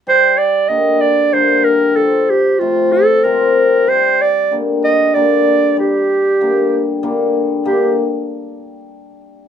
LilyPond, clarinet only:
\new Staff \with { instrumentName = "Clarinet" } { \time 3/4 \key g \minor \tempo 4 = 95 c''8 d''8 ees''8 d''8 c''8 bes'8 | a'8 g'8 f'8 a'8 bes'4 | c''8 d''8 r8 ees''8 d''4 | g'2 r4 |
g'8 r2 r8 | }